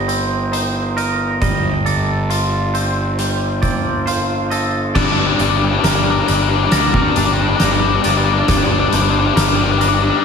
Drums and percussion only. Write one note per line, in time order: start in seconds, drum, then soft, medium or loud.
0.09 closed hi-hat soft
0.53 closed hi-hat medium
0.98 closed hi-hat soft
1.42 kick medium
1.42 closed hi-hat medium
1.86 closed hi-hat soft
2.30 closed hi-hat medium
2.75 closed hi-hat soft
3.19 closed hi-hat medium
3.63 kick medium
3.63 closed hi-hat soft
4.07 closed hi-hat medium
4.51 closed hi-hat soft
4.95 kick medium
4.95 snare soft
4.95 crash medium
5.39 closed hi-hat medium
5.84 snare soft
5.84 closed hi-hat medium
6.28 closed hi-hat medium
6.72 snare medium
6.72 closed hi-hat medium
6.94 kick medium
7.16 closed hi-hat medium
7.60 snare medium
7.60 closed hi-hat medium
8.04 closed hi-hat medium
8.48 kick loud
8.48 snare medium
8.48 closed hi-hat medium
8.93 closed hi-hat medium
9.37 snare medium
9.37 closed hi-hat medium
9.81 closed hi-hat medium